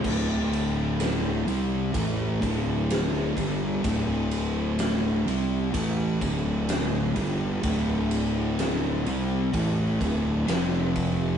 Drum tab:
CC |x-------|--------|--------|
RD |-xxxxxxx|xxxxxxxx|xxxxxxxx|
SD |--o---o-|--o---o-|--o---o-|
BD |o---oo-o|o---oo-o|o---oo-o|